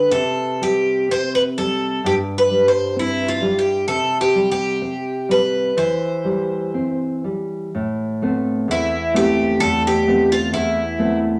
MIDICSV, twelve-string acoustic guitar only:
0, 0, Header, 1, 2, 480
1, 0, Start_track
1, 0, Key_signature, 0, "major"
1, 0, Tempo, 961538
1, 57, Time_signature, 2, 2, 24, 8
1, 1016, Tempo, 931677
1, 2936, Tempo, 970874
1, 3903, Key_signature, 0, "minor"
1, 4376, Tempo, 927357
1, 5786, End_track
2, 0, Start_track
2, 0, Title_t, "Twelve-string acoustic guitar"
2, 0, Program_c, 0, 25
2, 0, Note_on_c, 0, 71, 62
2, 55, Note_off_c, 0, 71, 0
2, 57, Note_on_c, 0, 69, 79
2, 310, Note_off_c, 0, 69, 0
2, 313, Note_on_c, 0, 67, 68
2, 556, Note_off_c, 0, 67, 0
2, 556, Note_on_c, 0, 72, 80
2, 661, Note_off_c, 0, 72, 0
2, 674, Note_on_c, 0, 71, 73
2, 704, Note_off_c, 0, 71, 0
2, 788, Note_on_c, 0, 69, 66
2, 1027, Note_off_c, 0, 69, 0
2, 1030, Note_on_c, 0, 67, 75
2, 1071, Note_off_c, 0, 67, 0
2, 1194, Note_on_c, 0, 71, 69
2, 1333, Note_off_c, 0, 71, 0
2, 1349, Note_on_c, 0, 72, 64
2, 1504, Note_off_c, 0, 72, 0
2, 1510, Note_on_c, 0, 64, 73
2, 1659, Note_on_c, 0, 65, 69
2, 1663, Note_off_c, 0, 64, 0
2, 1815, Note_on_c, 0, 67, 65
2, 1817, Note_off_c, 0, 65, 0
2, 1963, Note_off_c, 0, 67, 0
2, 1965, Note_on_c, 0, 69, 80
2, 2114, Note_off_c, 0, 69, 0
2, 2136, Note_on_c, 0, 67, 70
2, 2287, Note_off_c, 0, 67, 0
2, 2293, Note_on_c, 0, 67, 74
2, 2702, Note_off_c, 0, 67, 0
2, 2704, Note_on_c, 0, 71, 73
2, 2941, Note_off_c, 0, 71, 0
2, 2943, Note_on_c, 0, 72, 67
2, 3644, Note_off_c, 0, 72, 0
2, 4394, Note_on_c, 0, 64, 73
2, 4627, Note_off_c, 0, 64, 0
2, 4629, Note_on_c, 0, 67, 76
2, 4856, Note_on_c, 0, 69, 93
2, 4870, Note_off_c, 0, 67, 0
2, 4968, Note_off_c, 0, 69, 0
2, 4995, Note_on_c, 0, 67, 74
2, 5225, Note_off_c, 0, 67, 0
2, 5227, Note_on_c, 0, 65, 74
2, 5337, Note_off_c, 0, 65, 0
2, 5339, Note_on_c, 0, 64, 69
2, 5676, Note_off_c, 0, 64, 0
2, 5786, End_track
0, 0, End_of_file